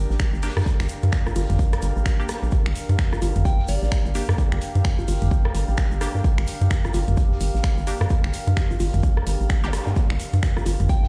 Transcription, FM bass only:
0.10 0.17 A1 medium
0.34 0.50 G1 loud
0.57 0.64 G2 medium
0.80 0.87 G1 loud
1.03 1.10 G2 medium
1.27 1.34 A1 medium
1.36 1.46 G1 loud
1.50 1.57 G1 loud
1.82 1.93 G1 medium
1.96 2.03 A1 medium
2.43 2.50 A#1 medium
2.66 2.73 G1 loud
2.89 2.96 G2 medium
3.13 3.20 A1 medium
3.22 3.32 G1 medium
3.36 3.43 G1 loud
3.68 3.79 G1 medium
3.82 3.89 A1 medium
4.06 4.22 G1 loud
4.29 4.36 G2 medium
4.52 4.59 G1 loud
4.75 4.82 G2 medium
4.99 5.06 A1 medium
5.08 5.18 G1 medium
5.22 5.29 G1 loud
5.55 5.65 G1 medium
5.68 5.75 A1 medium
5.92 6.08 G1 loud
6.15 6.22 G2 medium
6.38 6.45 G1 loud
6.61 6.68 G2 medium
6.85 6.92 A1 medium
6.94 7.04 G1 loud
7.08 7.15 G1 loud
7.41 7.51 G1 medium
7.54 7.61 A1 medium
7.78 7.94 G1 loud
8.01 8.08 G2 medium
8.24 8.31 G1 loud
8.47 8.54 G2 medium
8.71 8.78 A1 medium
8.80 8.90 G1 loud
8.94 9.01 G1 loud
9.27 9.37 G1 medium
9.40 9.47 A1 medium
9.64 9.80 G1 loud
9.87 9.94 G2 medium
10.10 10.17 G1 loud
10.33 10.40 G2 medium
10.57 10.64 A1 medium
10.66 10.76 G1 medium
10.80 10.87 G1 loud

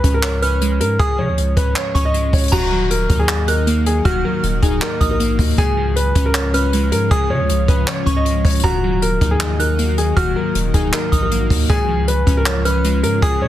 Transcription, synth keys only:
0.00 0.42 C#3 medium
0.00 0.61 F3 medium
0.00 0.41 C#4 medium
0.23 1.19 C#5 loud
0.43 1.38 C#4 medium
0.62 1.57 G#3 medium
1.00 1.95 C#3 medium
1.18 2.14 F3 medium
1.57 1.93 C#4 medium
1.76 2.52 C#5 loud
1.94 2.52 C#4 loud
2.14 2.52 G#3 medium
2.52 3.48 D#3 loud
2.72 3.67 F#3 medium
3.10 3.47 D#4 medium
3.29 4.24 D#5 loud
3.48 4.44 D#4 medium
3.67 4.62 A#3 medium
4.05 5.01 D#3 loud
4.25 5.20 F#3 medium
4.63 5.00 D#4 medium
4.82 5.58 D#5 loud
5.01 5.58 D#4 medium
5.20 5.58 A#3 medium
5.58 6.53 C#3 loud
5.77 6.73 F3 medium
6.15 6.53 C#4 medium
6.35 7.30 C#5 loud
6.54 7.49 C#4 medium
6.73 7.68 G#3 medium
7.12 8.07 C#3 medium
7.30 8.25 F3 medium
7.68 8.05 C#4 medium
7.87 8.64 C#5 loud
8.06 8.63 C#4 loud
8.25 8.64 G#3 medium
8.64 9.59 D#3 loud
8.84 9.79 F#3 medium
9.21 9.58 D#4 medium
9.41 10.36 D#5 loud
9.60 10.55 D#4 medium
9.79 10.74 A#3 loud
10.16 11.12 D#3 loud
10.36 11.31 F#3 medium
10.74 11.11 D#4 medium
10.93 11.70 D#5 loud
11.13 11.70 D#4 medium
11.31 11.70 A#3 medium
11.69 12.65 C#3 loud
11.89 12.84 F3 medium
12.26 12.64 C#4 medium
12.46 13.42 C#5 loud
12.65 13.48 C#4 medium
12.84 13.48 G#3 medium
13.23 13.48 C#3 medium
13.41 13.48 F3 medium

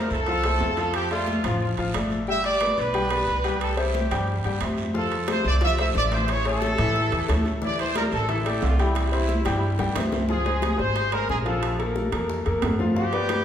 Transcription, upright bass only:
0.10 0.57 C2 loud
0.61 1.38 F2 medium
1.44 1.75 A1 medium
1.77 1.93 A1 medium
1.94 2.72 G1 medium
2.78 3.24 B1 medium
3.28 4.06 C2 medium
4.11 4.42 G2 loud
4.45 4.60 G2 medium
4.61 5.39 F2 medium
5.45 5.91 C2 loud
5.95 6.73 A1 medium
6.79 7.09 A2 loud
7.12 7.27 E2 medium
7.29 8.06 D2 medium
8.12 8.59 A1 medium
8.63 9.40 C2 medium
9.46 9.77 G2 loud
9.80 9.95 D2 medium
9.96 10.74 C#2 medium
10.79 11.26 G#1 medium
11.29 12.07 A#1 medium
12.13 12.44 F2 loud
12.46 12.62 F2 medium
12.63 13.41 G2 medium

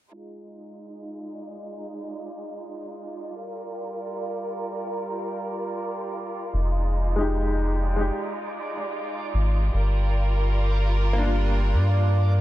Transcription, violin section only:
0.13 3.31 G#3 medium
0.13 3.31 D#4 medium
0.13 9.70 F4 medium
3.34 6.50 G3 medium
3.34 6.50 A#4 medium
6.53 9.71 G#3 medium
6.53 9.70 D#4 medium
9.74 12.41 G3 medium
9.74 12.41 F4 medium
9.74 12.41 A#4 medium

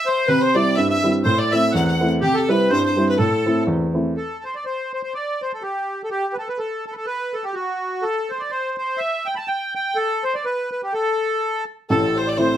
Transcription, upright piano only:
0.28 0.75 C3 medium
0.55 0.94 G3 soft
0.55 0.94 C4 soft
0.55 0.94 E4 medium
0.77 1.24 G2 medium
1.03 1.21 G3 medium
1.03 1.21 C4 soft
1.03 1.21 E4 medium
1.25 1.72 A2 medium
1.52 1.91 A3 medium
1.52 1.91 C4 soft
1.52 1.92 E4 medium
1.74 2.21 E2 medium
2.00 2.17 A3 soft
2.00 2.18 C4 soft
2.00 2.18 E4 medium
2.22 2.69 C3 medium
2.49 2.88 G3 medium
2.49 2.88 C4 soft
2.49 2.88 E4 medium
2.71 3.17 G2 medium
2.97 3.14 G3 soft
2.97 3.14 C4 soft
2.97 3.15 E4 soft
3.19 3.66 A2 medium
3.45 3.84 A3 soft
3.45 3.85 C4 soft
3.45 3.85 E4 medium
3.67 4.14 E2 medium
3.94 4.11 A3 soft
3.94 4.11 C4 soft
3.94 4.11 E4 soft
11.90 12.57 A1 medium
11.90 12.57 A2 medium
12.37 12.57 A3 soft
12.37 12.57 C4 soft
12.37 12.57 E4 medium

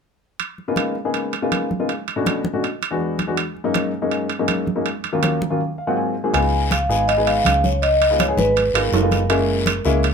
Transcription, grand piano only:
0.68 0.94 C#3 medium
0.68 0.94 G#3 medium
0.68 0.94 A#3 medium
0.68 0.94 B3 medium
0.68 0.94 D#4 medium
0.68 0.94 F4 medium
1.05 1.31 C#3 medium
1.05 1.31 G#3 medium
1.05 1.31 A#3 medium
1.05 1.31 B3 medium
1.05 1.31 D#4 medium
1.05 1.31 G#4 medium
1.42 1.68 C#3 medium
1.42 1.68 G#3 medium
1.42 1.68 A#3 medium
1.42 1.68 B3 medium
1.42 1.68 D#4 medium
1.42 1.68 F4 medium
1.79 1.89 C#3 medium
1.79 1.89 G#3 medium
1.79 1.89 A#3 medium
1.79 1.89 B3 medium
1.79 1.89 D#4 medium
1.79 1.89 F4 medium
2.16 2.42 B2 medium
2.16 2.42 A3 medium
2.16 2.42 C#4 medium
2.16 2.42 D4 medium
2.16 2.42 F#4 medium
2.53 2.63 B2 medium
2.53 2.63 A3 medium
2.53 2.63 C#4 medium
2.53 2.63 D4 medium
2.53 2.63 F#4 medium
2.91 3.17 E2 medium
2.91 3.17 G#3 medium
2.91 3.17 B3 medium
2.91 3.17 D4 medium
2.91 3.17 F#4 medium
3.27 3.37 E2 medium
3.27 3.37 G#3 medium
3.27 3.37 B3 medium
3.27 3.37 D4 medium
3.27 3.37 F#4 medium
3.64 3.91 F#2 medium
3.64 3.91 G#3 medium
3.64 3.91 A#3 medium
3.64 3.91 C#4 medium
3.64 3.91 D#4 medium
4.02 4.28 F#2 medium
4.02 4.28 G#3 medium
4.02 4.28 A#3 medium
4.02 4.28 C#4 medium
4.02 4.28 D#4 medium
4.39 4.65 F#2 medium
4.39 4.65 G#3 medium
4.39 4.65 A#3 medium
4.39 4.65 C#4 medium
4.39 4.65 D#4 medium
4.76 4.85 F#2 medium
4.76 4.85 G#3 medium
4.76 4.85 A#3 medium
4.76 4.85 C#4 medium
4.76 4.86 D#4 medium
5.13 5.39 D#2 medium
5.13 5.39 F#3 medium
5.13 5.39 A#3 medium
5.13 5.39 C#4 medium
5.13 5.39 F4 medium
5.50 5.60 D#2 medium
5.50 5.60 F#3 medium
5.50 5.60 A#3 medium
5.50 5.60 C#4 medium
5.50 5.60 F4 medium
5.78 5.87 F5 medium
5.87 6.13 G#2 medium
5.87 6.13 F#3 medium
5.87 6.13 A#3 medium
5.87 6.13 C4 medium
5.87 6.13 D#4 medium
5.87 6.13 F4 medium
5.87 5.96 F#5 medium
5.97 6.31 G#5 medium
6.24 6.34 G#2 medium
6.24 6.34 F#3 medium
6.24 6.34 A#3 medium
6.24 6.34 C4 medium
6.24 6.32 D#4 medium
6.24 6.34 G#4 medium
6.33 6.72 G#3 medium
6.33 6.72 B3 medium
6.33 6.72 D#4 medium
6.33 6.72 F4 medium
6.89 7.09 G#3 medium
6.89 7.09 B3 medium
6.89 7.09 D#4 medium
6.89 7.09 G#4 medium
7.17 7.69 G#3 medium
7.17 7.69 B3 medium
7.17 7.69 D#4 medium
7.17 7.69 G#4 medium
8.11 8.23 G#3 medium
8.11 8.23 B3 medium
8.11 8.23 D#4 medium
8.11 8.23 F4 medium
8.28 8.61 G#3 medium
8.28 8.61 B3 medium
8.28 8.61 D#4 medium
8.28 8.61 G#4 medium
8.75 8.94 G#3 medium
8.75 8.94 B3 medium
8.75 8.94 D#4 medium
8.75 8.94 F4 medium
9.02 9.22 G#3 medium
9.02 9.22 B3 medium
9.02 9.22 D#4 medium
9.02 9.22 F4 medium
9.30 9.69 G#3 medium
9.30 9.69 A#3 medium
9.30 9.69 C#4 medium
9.30 9.69 E4 loud
9.85 10.05 G#3 medium
9.85 10.05 A#3 medium
9.85 10.05 C#4 medium
9.85 10.05 E4 loud

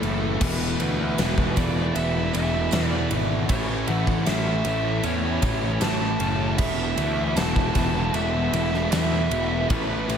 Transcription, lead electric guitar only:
0.00 0.44 A4 medium
0.42 1.53 B4 loud
1.57 1.97 D5 loud
1.95 2.31 E5 loud
2.34 2.87 E5 loud
2.87 3.07 D5 loud
3.50 3.90 C#5 loud
3.88 4.27 F#5 loud
4.28 5.07 E5 medium
5.05 5.84 C#5 loud
5.81 6.61 A5 loud
6.58 7.38 E5 loud
7.36 8.17 A5 loud
8.15 8.91 E5 loud
8.92 9.66 E5 medium
9.69 10.18 B4 loud

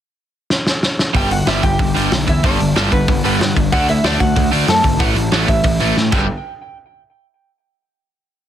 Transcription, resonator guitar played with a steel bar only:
1.16 1.30 G4 medium
1.16 1.31 G5 loud
1.31 1.46 F#4 medium
1.31 1.46 F#5 medium
1.48 1.63 E4 medium
1.48 1.64 E5 medium
1.63 2.23 G4 medium
1.63 2.30 G5 medium
2.29 2.43 E4 medium
2.29 2.45 E5 medium
2.45 2.89 D4 medium
2.45 2.90 D5 medium
2.92 3.22 B3 medium
2.92 3.24 B4 medium
3.25 3.55 B3 medium
3.25 3.54 B4 medium
3.72 3.88 F#4 medium
3.72 3.89 F#5 loud
3.90 4.04 E4 medium
3.90 4.05 E5 medium
4.05 4.20 D4 medium
4.05 4.21 D5 medium
4.20 4.50 F#4 medium
4.20 4.50 F#5 medium
4.69 4.99 A4 medium
4.69 5.02 A5 medium
5.00 5.46 F#4 medium
5.00 5.48 F#5 loud
5.49 6.09 E4 medium
5.49 6.09 E5 medium
6.13 6.28 G5 medium

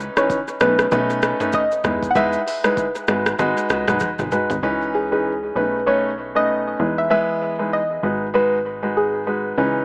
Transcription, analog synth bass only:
0.61 0.87 B1 loud
0.92 1.34 B1 loud
1.85 2.37 E2 loud
3.08 3.35 G#1 loud
3.39 3.54 G#1 loud
3.70 3.85 C#2 loud
3.88 3.99 B1 medium
4.19 4.30 G#1 medium
4.50 4.61 G#1 medium
4.63 5.52 C#2 medium
5.56 6.75 B1 medium
6.79 7.99 E2 medium
8.03 9.54 G#1 medium
9.58 9.85 C#2 medium

